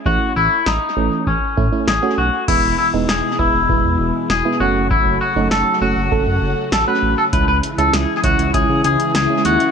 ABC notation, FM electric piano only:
X:1
M:4/4
L:1/16
Q:1/4=99
K:E
V:1 name="FM electric piano"
[A,CE]4 z2 [E,A,C]2 z2 [A,CE] [A,CE] z [A,CF]2 z | [G,B,E]2 z [G,B,D]2 z [G,B,E] z [G,B,E]3 z2 [G,B,E] [A,CF]2- | [A,CF]2 z [A,CD]2 z [A,CF] z [A,CA]3 z2 [A,CF]2 z | [G,CE]2 z [G,CE]2 z [G,CE] z [G,CE]3 z2 [G,CE]2 z |]